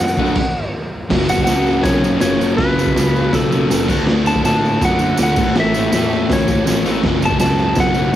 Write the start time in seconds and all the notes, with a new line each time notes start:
Already playing: F#5
0.01 F#2
0.08 tambourine
0.17 D3 A3 D4, kick, tambourine
0.27 tambourine
0.35 kick, crash
1.09 F#1 F#2 C#3 F#3, kick, snare, crash
1.28 C#3 F#3 F#5, tambourine
1.38 kick
1.44 C#2 F#2 C#3 F#5, snare, tambourine, crash
1.50 F#3
1.67 tambourine
1.83 B1 C#5, kick, snare, tambourine, crash
2.02 C#3 F#3, tambourine
2.20 F#1 F#2 C#3 C#5, snare, tambourine, crash
2.25 F#3
2.38 F#1 F#3, tambourine
2.43 C#3
2.57 F#1 F#2 C#3 B4, kick, snare, crash
2.61 F#3
2.77 C#3 F#3, tambourine
2.86 kick
2.95 C#2 F#2 C#3, snare, tambourine, crash
2.99 F#3
3.16 tambourine
3.32 B1 A4, kick, snare, tambourine, crash
3.51 C#3 F#3, tambourine
3.69 F#1 F#2 C#3 F#3, snare, tambourine, crash
3.88 D2 D3 A3 D4, kick, tambourine, crash
4.06 D2 D3 A3 D4, snare, crash
4.25 A3 D4 A5, tambourine
4.35 kick
4.44 A2 D3 A3 D4 A5, snare, tambourine, crash
4.65 tambourine
4.81 F#2 F#5, kick, snare, tambourine, crash
4.99 A3 D4, tambourine
5.17 D2 D3 A3, snare, tambourine, crash
5.21 D4 F#5
5.36 A1 A2 E3 A3, kick, tambourine, crash
5.55 A1 A2 E3 A3, snare, tambourine, crash
5.60 E5
5.74 E3 A3, tambourine
5.91 E2 A2 E3 A3, snare, tambourine, crash
6.13 tambourine
6.29 D2 C#5, kick, snare, tambourine, crash
6.48 E3 A3, kick, tambourine
6.66 A1 A2 E3 A3, snare, tambourine, crash
6.85 A1 A3, snare, tambourine
6.89 E3
7.03 F#1 F#2 C#3 F#3, kick, snare, crash
7.22 C#3 F#3 A5, tambourine
7.31 kick
7.39 C#2 F#2 C#3 F#3 A5, snare, tambourine, crash
7.59 tambourine
7.75 B1, kick, snare, tambourine, crash
7.80 F#5
7.94 F#3, tambourine
7.99 C#3
8.12 F#2